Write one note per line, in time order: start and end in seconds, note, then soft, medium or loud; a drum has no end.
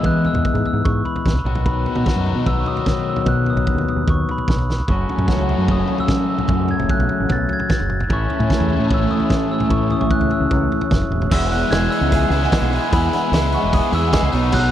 0.00 1.45 E3 medium
0.00 0.28 E3 medium
0.00 1.46 G#3 medium
0.00 1.46 B3 medium
0.00 1.47 E4 medium
0.00 floor tom medium
0.04 0.26 F#6 medium
0.04 kick loud
0.25 0.65 E6 medium
0.25 floor tom medium
0.33 0.42 E2 medium
0.33 floor tom medium
0.33 mid tom medium
0.45 kick medium
0.54 0.62 G#2 medium
0.54 floor tom medium
0.65 0.87 E6 medium
0.65 floor tom medium
0.73 0.82 G#2 medium
0.85 1.01 G#2 medium
0.85 1.06 C#6 medium
0.85 kick loud
0.85 floor tom medium
1.05 1.43 B5 medium
1.05 floor tom medium
1.16 floor tom medium
1.26 kick loud
1.26 snare medium
1.26 mid tom medium
1.33 1.42 C2 medium
1.33 floor tom medium
1.44 1.85 B1 medium
1.44 4.67 B2 medium
1.44 4.68 D#3 medium
1.44 4.88 F#3 medium
1.44 4.68 B3 medium
1.44 4.90 F#4 medium
1.44 mid tom medium
1.55 floor tom medium
1.55 mid tom medium
1.66 2.49 B5 medium
1.66 kick medium
1.66 floor tom medium
1.86 floor tom medium
1.95 2.04 B2 medium
1.95 floor tom medium
1.95 mid tom medium
2.06 kick loud
2.06 snare medium
2.16 2.32 F#2 medium
2.16 floor tom medium
2.26 floor tom medium
2.35 2.44 B2 medium
2.46 2.62 B1 medium
2.46 2.60 E6 medium
2.46 kick medium
2.46 floor tom medium
2.60 2.67 C#6 medium
2.66 3.09 D#6 medium
2.66 floor tom medium
2.77 floor tom medium
2.86 kick loud
2.86 snare medium
2.86 mid tom medium
3.10 3.29 E6 medium
3.16 floor tom medium
3.16 mid tom medium
3.26 3.50 B2 medium
3.26 3.49 F#6 loud
3.26 kick loud
3.26 floor tom medium
3.46 3.88 D#6 medium
3.46 floor tom medium
3.56 3.64 B1 medium
3.56 floor tom medium
3.56 mid tom medium
3.67 kick loud
3.75 3.84 D#2 medium
3.75 floor tom medium
3.88 4.09 D#6 medium
3.88 floor tom medium
3.96 4.05 D#2 medium
4.07 4.23 D#2 medium
4.07 4.30 C#6 medium
4.07 kick loud
4.07 floor tom medium
4.29 4.67 B5 medium
4.29 floor tom medium
4.38 floor tom medium
4.48 kick loud
4.48 snare medium
4.48 mid tom medium
4.56 4.80 B1 medium
4.56 floor tom medium
4.70 snare medium
4.78 floor tom medium
4.88 5.04 F#1 medium
4.88 8.10 F#2 medium
4.88 8.07 C#3 medium
4.88 8.09 F#3 medium
4.88 8.10 A3 medium
4.88 8.11 C#4 medium
4.88 8.12 F#4 medium
4.88 5.66 C#6 medium
4.88 kick medium
4.88 floor tom medium
5.09 floor tom medium
5.18 5.26 F#2 medium
5.18 floor tom medium
5.18 mid tom medium
5.28 kick medium
5.28 snare medium
5.37 5.53 C#2 medium
5.37 floor tom medium
5.49 floor tom medium
5.58 5.66 F#2 medium
5.68 5.84 F#1 medium
5.68 kick medium
5.68 floor tom medium
5.72 5.98 D#6 medium
5.88 floor tom medium
5.98 6.29 E6 medium
5.98 floor tom medium
6.08 kick loud
6.08 snare medium
6.08 mid tom medium
6.30 6.71 E6 medium
6.38 floor tom medium
6.38 mid tom medium
6.48 6.72 F#2 medium
6.48 kick loud
6.48 floor tom medium
6.68 6.91 G#6 loud
6.68 floor tom medium
6.79 6.88 F#1 medium
6.79 floor tom medium
6.79 mid tom medium
6.89 7.31 F#6 loud
6.89 kick loud
6.99 7.07 B1 medium
6.99 floor tom medium
7.09 floor tom medium
7.20 7.28 A1 medium
7.29 7.46 B1 loud
7.29 7.52 A6 loud
7.29 kick loud
7.29 floor tom medium
7.49 floor tom medium
7.53 7.72 G#6 medium
7.59 floor tom medium
7.69 7.99 A6 loud
7.69 kick loud
7.69 snare medium
7.69 mid tom medium
7.79 8.04 F#1 medium
7.79 floor tom medium
7.90 mid tom medium
8.00 floor tom medium
8.00 mid tom medium
8.09 8.25 A1 loud
8.09 11.31 A2 medium
8.09 11.31 E3 medium
8.09 11.32 A3 medium
8.09 11.33 C#4 medium
8.09 11.33 E4 medium
8.09 kick loud
8.09 floor tom medium
8.13 8.88 C#6 medium
8.30 floor tom medium
8.40 8.48 A2 medium
8.40 floor tom medium
8.40 mid tom medium
8.50 kick loud
8.50 snare medium
8.60 8.76 E2 medium
8.60 floor tom medium
8.70 floor tom medium
8.79 8.88 A2 medium
8.90 9.06 A1 medium
8.90 9.13 E6 medium
8.90 kick loud
8.90 floor tom medium
9.11 9.52 D#6 medium
9.11 floor tom medium
9.20 floor tom medium
9.30 kick medium
9.30 snare medium
9.30 mid tom medium
9.51 9.72 E6 medium
9.60 floor tom medium
9.60 mid tom medium
9.70 9.94 A2 medium
9.70 9.92 C#6 medium
9.70 kick loud
9.70 floor tom medium
9.90 10.02 D#6 medium
9.90 floor tom medium
10.01 10.09 A1 medium
10.01 10.12 C#6 medium
10.01 floor tom medium
10.01 mid tom medium
10.11 10.32 F#6 loud
10.11 kick medium
10.20 10.29 C#2 medium
10.20 floor tom medium
10.31 11.08 E6 medium
10.31 floor tom medium
10.40 10.49 C#2 medium
10.51 10.67 C#2 medium
10.51 kick loud
10.51 floor tom medium
10.72 floor tom medium
10.81 floor tom medium
10.91 11.08 F#1 medium
10.91 kick loud
10.91 snare medium
10.91 mid tom medium
11.01 floor tom medium
11.09 11.28 E1 medium
11.09 mid tom medium
11.22 floor tom medium
11.22 mid tom medium
11.31 11.63 E1 loud
11.31 12.32 E2 medium
11.31 11.71 E3 medium
11.31 11.72 G#3 loud
11.31 11.72 B3 loud
11.31 11.73 E4 loud
11.31 11.53 E6 loud
11.31 kick loud
11.31 crash loud
11.52 11.73 F#6 loud
11.52 snare soft
11.52 open hi-hat medium
11.70 11.87 E1 loud
11.70 12.51 E3 medium
11.70 12.33 G#3 medium
11.70 12.33 B3 medium
11.70 12.30 E4 loud
11.70 11.92 G#6 loud
11.70 snare loud
11.70 open hi-hat medium
11.91 12.33 B3 medium
11.91 12.95 E6 loud
11.91 open hi-hat medium
12.01 12.25 C#2 loud
12.11 12.71 G#4 medium
12.11 kick loud
12.11 open hi-hat medium
12.30 12.47 C#2 loud
12.30 12.53 B3 medium
12.30 12.53 E4 medium
12.30 open hi-hat medium
12.35 12.51 G#3 medium
12.43 snare soft
12.52 12.90 E3 medium
12.52 12.72 G#3 loud
12.52 12.72 B3 loud
12.52 12.70 E4 loud
12.52 kick medium
12.52 snare loud
12.52 open hi-hat medium
12.62 12.78 B1 loud
12.71 12.91 G#3 medium
12.71 12.93 B3 medium
12.71 12.93 E4 medium
12.71 13.71 G#4 medium
12.71 open hi-hat medium
12.91 13.08 E2 loud
12.91 13.93 E2 medium
12.91 13.31 E3 medium
12.91 13.31 G#3 medium
12.91 13.33 B3 loud
12.91 13.33 E4 loud
12.91 13.13 B5 loud
12.91 kick loud
12.91 open hi-hat loud
13.13 13.55 B5 loud
13.13 snare soft
13.13 open hi-hat medium
13.32 13.56 C#2 loud
13.32 14.10 E3 medium
13.32 13.93 G#3 medium
13.32 13.93 B3 medium
13.32 13.91 E4 medium
13.32 snare loud
13.32 open hi-hat medium
13.52 13.92 B3 medium
13.52 13.74 C#6 medium
13.52 open hi-hat medium
13.63 13.79 E1 medium
13.72 14.33 G#4 medium
13.72 13.92 D#6 loud
13.72 kick loud
13.72 open hi-hat medium
13.92 14.16 E2 loud
13.92 14.10 G#3 medium
13.92 14.13 B3 medium
13.92 14.12 E4 medium
13.92 14.31 E6 loud
13.92 open hi-hat medium
14.11 14.31 E3 medium
14.11 14.31 G#3 loud
14.11 14.32 B3 loud
14.11 14.31 E4 loud
14.11 kick medium
14.11 snare loud
14.11 open hi-hat medium
14.23 14.31 C#2 medium
14.31 14.71 B1 loud
14.31 14.50 B2 medium
14.31 14.51 F#3 medium
14.31 14.52 B3 loud
14.31 14.53 D#4 medium
14.31 open hi-hat medium
14.50 14.71 B2 medium
14.50 14.71 F#3 loud
14.50 14.71 B3 medium
14.50 14.71 D#4 loud
14.50 14.71 F#6 loud
14.50 kick loud
14.50 crash loud